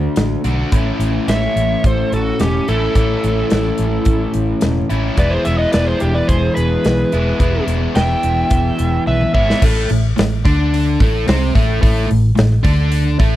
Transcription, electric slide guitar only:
1.29 E5
1.87 C5
2.14 A4
2.41 G4
2.69 A4
5.19 D5
5.30 C5
5.45 E5
5.58 D#5
5.73 D5
5.87 C5
6.01 G4
6.14 D5
6.28 C5
6.56 B4
7.96 G5
9.07 E5
9.35 E5

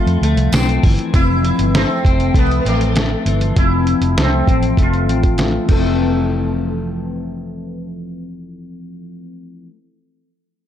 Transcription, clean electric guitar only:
Already playing: F2 F3 A3 C4
0.23 A3
0.54 C4
0.84 E3
1.14 F2
1.45 E3
1.75 A3
2.05 C4
2.35 A3
2.66 C4
2.96 A3
3.27 E3
3.57 F2
4.18 A3
4.48 C4
4.78 A3
5.09 C4
5.39 A3
5.65 F2
5.70 E3 A3
5.77 C4

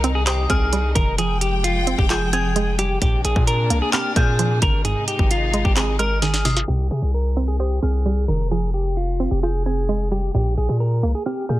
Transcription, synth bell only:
0.27 D#6
0.50 F6
2.11 G6
2.33 G#6
3.93 F6
4.17 G6
5.99 F6
6.45 D#6
7.60 D#6
7.83 F6
9.44 G6
9.66 G#6
11.26 F6
11.50 G6

